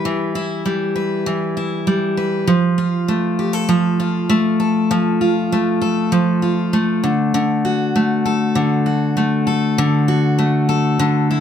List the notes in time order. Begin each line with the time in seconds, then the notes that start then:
Already playing: G3 E4 B4
0.05 E3
0.35 E4
0.66 G3
0.96 B4
1.26 E3
1.57 E4
1.87 G3
2.17 B4
2.47 F3
2.78 F4
3.08 A3
3.39 G4
3.53 A4
3.69 F3
4.00 F4
4.29 A3
4.60 A4
4.91 F3
5.21 F4
5.52 A3
5.81 A4
6.12 F3
6.42 F4
6.73 A3
7.04 D3
7.34 D3
7.65 F#4
7.96 A3
8.26 A4
8.55 D3
8.86 F#4
9.17 A3
9.47 A4
9.78 D3
10.08 F#4
10.39 A3
10.69 A4
10.99 D3
11.31 E4